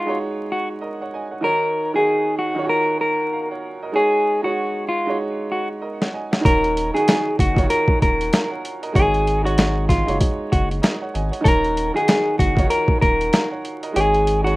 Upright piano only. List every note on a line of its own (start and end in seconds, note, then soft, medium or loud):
0.00 0.06 G#3 medium
0.00 0.07 D#4 medium
0.00 0.08 F#4 medium
0.00 0.09 C#5 loud
0.06 0.95 G#3 medium
0.06 0.95 D#4 medium
0.06 0.96 F#4 medium
0.06 0.84 C#5 loud
0.81 1.00 A#4 medium
0.81 0.99 D#5 medium
1.02 1.14 C#5 medium
1.02 1.14 F#5 medium
1.14 1.32 D#5 medium
1.14 1.31 G#5 medium
1.31 1.43 C#5 medium
1.31 1.61 F#5 medium
1.41 1.77 D#3 medium
1.41 1.77 D#4 medium
1.41 1.78 F#4 medium
1.41 1.79 C#5 loud
1.94 2.37 D#3 medium
1.94 2.37 D#4 medium
1.94 2.38 F#4 medium
1.94 2.39 G#4 loud
2.55 3.44 D#3 medium
2.55 3.45 D#4 medium
2.55 2.63 F4 medium
2.55 3.34 C#5 loud
2.64 3.49 F#4 medium
3.32 3.50 F5 medium
3.32 3.50 A#5 medium
3.51 3.81 C#5 medium
3.51 3.81 F#5 medium
3.83 4.12 A#4 medium
3.83 4.12 D#5 medium
3.92 4.27 G#3 loud
3.92 4.28 D#4 medium
3.92 4.29 F#4 medium
3.92 4.29 C#5 loud
4.42 4.86 G#3 medium
4.42 4.86 D#4 medium
4.42 4.87 F#4 medium
4.42 4.87 C#5 medium
5.05 5.95 G#3 medium
5.05 5.95 D#4 medium
5.05 5.96 F#4 medium
5.05 5.84 C#5 loud
5.81 6.00 A#4 medium
5.81 5.99 D#5 medium
6.01 6.14 C#5 medium
6.01 6.14 F#5 medium
6.14 6.31 D#5 medium
6.14 6.31 G#5 medium
6.31 6.43 C#5 medium
6.31 6.61 F#5 medium
6.41 6.77 D#3 medium
6.41 6.77 D#4 medium
6.41 6.78 F#4 medium
6.41 6.79 C#5 loud
6.94 7.37 D#3 medium
6.94 7.37 D#4 medium
6.94 7.38 F#4 medium
6.94 7.38 G#4 loud
7.55 8.44 D#3 medium
7.55 8.45 D#4 medium
7.55 7.63 F4 medium
7.55 8.34 C#5 loud
7.64 8.49 F#4 medium
8.33 8.50 F5 medium
8.33 8.50 A#5 medium
8.51 8.81 C#5 medium
8.51 8.81 F#5 medium
8.83 9.13 A#4 medium
8.83 9.12 D#5 medium
8.92 9.28 G#3 medium
8.92 9.28 D#4 medium
8.92 9.29 F#4 medium
8.92 9.29 C#5 loud
9.42 9.86 G#3 medium
9.42 9.86 D#4 medium
9.42 9.87 F#4 medium
9.42 9.88 C#5 medium
10.06 10.95 G#3 medium
10.06 10.95 D#4 medium
10.06 10.96 F#4 medium
10.06 10.84 C#5 loud
10.82 11.00 A#4 medium
10.82 11.00 D#5 medium
11.02 11.14 C#5 medium
11.02 11.14 F#5 medium
11.14 11.32 D#5 medium
11.14 11.31 G#5 medium
11.31 11.43 C#5 medium
11.31 11.62 F#5 medium
11.41 11.77 D#3 medium
11.41 11.78 D#4 medium
11.41 11.78 F#4 medium
11.41 11.79 C#5 loud
11.94 12.37 D#3 medium
11.94 12.37 D#4 medium
11.94 12.38 F#4 medium
11.94 12.39 G#4 loud
12.55 13.44 D#3 medium
12.55 13.45 D#4 medium
12.55 12.63 F4 medium
12.55 13.34 C#5 loud
12.64 13.49 F#4 medium
13.33 13.50 F5 medium
13.33 13.50 A#5 medium
13.51 13.81 C#5 medium
13.51 13.81 F#5 medium
13.83 14.13 A#4 medium
13.83 14.12 D#5 medium
13.92 14.28 G#3 medium
13.92 14.28 D#4 medium
13.92 14.29 F#4 medium
13.92 14.29 C#5 loud
14.42 14.56 G#3 medium
14.42 14.56 D#4 medium
14.42 14.56 F#4 medium
14.42 14.56 C#5 medium